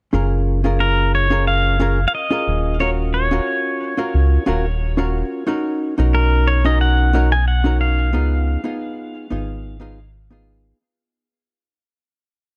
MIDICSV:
0, 0, Header, 1, 4, 480
1, 0, Start_track
1, 0, Key_signature, 6, "major"
1, 0, Tempo, 666667
1, 102, Time_signature, 4, 2, 24, 8
1, 9046, End_track
2, 0, Start_track
2, 0, Title_t, "Pedal steel guitar"
2, 0, Program_c, 0, 26
2, 579, Note_on_c, 0, 70, 85
2, 824, Note_off_c, 0, 70, 0
2, 827, Note_on_c, 0, 73, 85
2, 1059, Note_off_c, 0, 73, 0
2, 1062, Note_on_c, 0, 77, 99
2, 1487, Note_off_c, 0, 77, 0
2, 1495, Note_on_c, 0, 77, 77
2, 1542, Note_off_c, 0, 77, 0
2, 1546, Note_on_c, 0, 75, 100
2, 2019, Note_on_c, 0, 73, 94
2, 2038, Note_off_c, 0, 75, 0
2, 2084, Note_off_c, 0, 73, 0
2, 2260, Note_on_c, 0, 73, 81
2, 3672, Note_off_c, 0, 73, 0
2, 4425, Note_on_c, 0, 70, 87
2, 4662, Note_on_c, 0, 73, 87
2, 4670, Note_off_c, 0, 70, 0
2, 4792, Note_on_c, 0, 75, 93
2, 4794, Note_off_c, 0, 73, 0
2, 4901, Note_off_c, 0, 75, 0
2, 4904, Note_on_c, 0, 78, 110
2, 5246, Note_off_c, 0, 78, 0
2, 5271, Note_on_c, 0, 80, 93
2, 5381, Note_off_c, 0, 80, 0
2, 5383, Note_on_c, 0, 78, 105
2, 5619, Note_off_c, 0, 78, 0
2, 5622, Note_on_c, 0, 77, 100
2, 7273, Note_off_c, 0, 77, 0
2, 9046, End_track
3, 0, Start_track
3, 0, Title_t, "Hollow-body jazz guitar"
3, 0, Program_c, 1, 26
3, 92, Note_on_c, 1, 61, 72
3, 96, Note_on_c, 1, 65, 68
3, 99, Note_on_c, 1, 68, 67
3, 105, Note_on_c, 1, 70, 81
3, 435, Note_off_c, 1, 61, 0
3, 436, Note_off_c, 1, 65, 0
3, 438, Note_off_c, 1, 68, 0
3, 441, Note_off_c, 1, 70, 0
3, 461, Note_on_c, 1, 61, 67
3, 465, Note_on_c, 1, 65, 64
3, 469, Note_on_c, 1, 68, 64
3, 472, Note_on_c, 1, 70, 80
3, 915, Note_off_c, 1, 61, 0
3, 916, Note_off_c, 1, 65, 0
3, 919, Note_off_c, 1, 68, 0
3, 920, Note_off_c, 1, 70, 0
3, 938, Note_on_c, 1, 61, 75
3, 942, Note_on_c, 1, 65, 67
3, 947, Note_on_c, 1, 68, 69
3, 951, Note_on_c, 1, 70, 84
3, 1269, Note_off_c, 1, 61, 0
3, 1271, Note_off_c, 1, 65, 0
3, 1273, Note_off_c, 1, 68, 0
3, 1276, Note_off_c, 1, 70, 0
3, 1293, Note_on_c, 1, 61, 89
3, 1297, Note_on_c, 1, 65, 76
3, 1301, Note_on_c, 1, 68, 77
3, 1306, Note_on_c, 1, 70, 95
3, 1424, Note_off_c, 1, 61, 0
3, 1427, Note_off_c, 1, 65, 0
3, 1428, Note_off_c, 1, 68, 0
3, 1431, Note_off_c, 1, 70, 0
3, 1660, Note_on_c, 1, 61, 73
3, 1663, Note_on_c, 1, 65, 69
3, 1668, Note_on_c, 1, 68, 68
3, 1673, Note_on_c, 1, 70, 78
3, 1990, Note_off_c, 1, 61, 0
3, 1991, Note_off_c, 1, 65, 0
3, 1994, Note_off_c, 1, 68, 0
3, 1996, Note_off_c, 1, 70, 0
3, 2015, Note_on_c, 1, 61, 75
3, 2019, Note_on_c, 1, 65, 70
3, 2024, Note_on_c, 1, 66, 69
3, 2028, Note_on_c, 1, 70, 84
3, 2356, Note_off_c, 1, 61, 0
3, 2359, Note_off_c, 1, 65, 0
3, 2360, Note_off_c, 1, 66, 0
3, 2363, Note_off_c, 1, 70, 0
3, 2384, Note_on_c, 1, 61, 76
3, 2391, Note_on_c, 1, 65, 64
3, 2393, Note_on_c, 1, 66, 66
3, 2397, Note_on_c, 1, 70, 80
3, 2837, Note_off_c, 1, 61, 0
3, 2839, Note_off_c, 1, 65, 0
3, 2841, Note_off_c, 1, 66, 0
3, 2843, Note_off_c, 1, 70, 0
3, 2861, Note_on_c, 1, 61, 73
3, 2866, Note_on_c, 1, 65, 70
3, 2868, Note_on_c, 1, 66, 68
3, 2871, Note_on_c, 1, 70, 81
3, 3191, Note_off_c, 1, 61, 0
3, 3192, Note_off_c, 1, 65, 0
3, 3194, Note_off_c, 1, 66, 0
3, 3196, Note_off_c, 1, 70, 0
3, 3212, Note_on_c, 1, 61, 89
3, 3216, Note_on_c, 1, 65, 79
3, 3220, Note_on_c, 1, 66, 80
3, 3226, Note_on_c, 1, 70, 92
3, 3344, Note_off_c, 1, 61, 0
3, 3346, Note_off_c, 1, 65, 0
3, 3348, Note_off_c, 1, 66, 0
3, 3351, Note_off_c, 1, 70, 0
3, 3580, Note_on_c, 1, 61, 69
3, 3585, Note_on_c, 1, 65, 67
3, 3588, Note_on_c, 1, 66, 72
3, 3592, Note_on_c, 1, 70, 80
3, 3910, Note_off_c, 1, 61, 0
3, 3912, Note_off_c, 1, 65, 0
3, 3914, Note_off_c, 1, 66, 0
3, 3916, Note_off_c, 1, 70, 0
3, 3936, Note_on_c, 1, 61, 77
3, 3940, Note_on_c, 1, 63, 73
3, 3943, Note_on_c, 1, 66, 67
3, 3947, Note_on_c, 1, 70, 85
3, 4276, Note_off_c, 1, 61, 0
3, 4279, Note_off_c, 1, 63, 0
3, 4279, Note_off_c, 1, 66, 0
3, 4282, Note_off_c, 1, 70, 0
3, 4304, Note_on_c, 1, 61, 76
3, 4308, Note_on_c, 1, 63, 69
3, 4312, Note_on_c, 1, 66, 64
3, 4316, Note_on_c, 1, 70, 83
3, 4756, Note_off_c, 1, 61, 0
3, 4758, Note_off_c, 1, 63, 0
3, 4761, Note_off_c, 1, 66, 0
3, 4761, Note_off_c, 1, 70, 0
3, 4786, Note_on_c, 1, 61, 82
3, 4790, Note_on_c, 1, 63, 77
3, 4795, Note_on_c, 1, 66, 74
3, 4797, Note_on_c, 1, 70, 88
3, 5113, Note_off_c, 1, 61, 0
3, 5115, Note_off_c, 1, 63, 0
3, 5116, Note_off_c, 1, 66, 0
3, 5118, Note_off_c, 1, 70, 0
3, 5136, Note_on_c, 1, 61, 91
3, 5144, Note_on_c, 1, 63, 82
3, 5146, Note_on_c, 1, 66, 78
3, 5149, Note_on_c, 1, 70, 96
3, 5266, Note_off_c, 1, 61, 0
3, 5270, Note_off_c, 1, 63, 0
3, 5271, Note_off_c, 1, 66, 0
3, 5272, Note_off_c, 1, 70, 0
3, 5501, Note_on_c, 1, 61, 75
3, 5505, Note_on_c, 1, 63, 72
3, 5510, Note_on_c, 1, 66, 69
3, 5515, Note_on_c, 1, 70, 87
3, 5831, Note_off_c, 1, 61, 0
3, 5832, Note_off_c, 1, 63, 0
3, 5835, Note_off_c, 1, 66, 0
3, 5838, Note_off_c, 1, 70, 0
3, 5853, Note_on_c, 1, 59, 76
3, 5858, Note_on_c, 1, 63, 73
3, 5860, Note_on_c, 1, 65, 71
3, 5863, Note_on_c, 1, 68, 88
3, 6195, Note_off_c, 1, 59, 0
3, 6197, Note_off_c, 1, 63, 0
3, 6198, Note_off_c, 1, 65, 0
3, 6200, Note_off_c, 1, 68, 0
3, 6219, Note_on_c, 1, 59, 77
3, 6222, Note_on_c, 1, 63, 72
3, 6225, Note_on_c, 1, 65, 73
3, 6230, Note_on_c, 1, 68, 85
3, 6674, Note_off_c, 1, 59, 0
3, 6675, Note_off_c, 1, 63, 0
3, 6677, Note_off_c, 1, 65, 0
3, 6679, Note_off_c, 1, 68, 0
3, 6699, Note_on_c, 1, 59, 75
3, 6702, Note_on_c, 1, 63, 74
3, 6707, Note_on_c, 1, 65, 74
3, 6711, Note_on_c, 1, 68, 90
3, 7029, Note_off_c, 1, 59, 0
3, 7031, Note_off_c, 1, 63, 0
3, 7033, Note_off_c, 1, 65, 0
3, 7035, Note_off_c, 1, 68, 0
3, 7054, Note_on_c, 1, 59, 90
3, 7061, Note_on_c, 1, 63, 80
3, 7066, Note_on_c, 1, 65, 82
3, 7068, Note_on_c, 1, 68, 100
3, 7185, Note_off_c, 1, 59, 0
3, 7189, Note_off_c, 1, 63, 0
3, 7190, Note_off_c, 1, 65, 0
3, 7192, Note_off_c, 1, 68, 0
3, 7420, Note_on_c, 1, 59, 80
3, 7425, Note_on_c, 1, 63, 69
3, 7429, Note_on_c, 1, 65, 71
3, 7433, Note_on_c, 1, 68, 91
3, 7750, Note_off_c, 1, 59, 0
3, 7752, Note_off_c, 1, 63, 0
3, 7755, Note_off_c, 1, 65, 0
3, 7756, Note_off_c, 1, 68, 0
3, 9046, End_track
4, 0, Start_track
4, 0, Title_t, "Analog synth bass"
4, 0, Program_c, 2, 38
4, 96, Note_on_c, 2, 30, 102
4, 1485, Note_off_c, 2, 30, 0
4, 1782, Note_on_c, 2, 27, 96
4, 2448, Note_off_c, 2, 27, 0
4, 2984, Note_on_c, 2, 37, 85
4, 3156, Note_off_c, 2, 37, 0
4, 3222, Note_on_c, 2, 27, 75
4, 3769, Note_off_c, 2, 27, 0
4, 4312, Note_on_c, 2, 35, 84
4, 5866, Note_on_c, 2, 37, 88
4, 5877, Note_off_c, 2, 35, 0
4, 6171, Note_off_c, 2, 37, 0
4, 6708, Note_on_c, 2, 32, 96
4, 7727, Note_off_c, 2, 32, 0
4, 9046, End_track
0, 0, End_of_file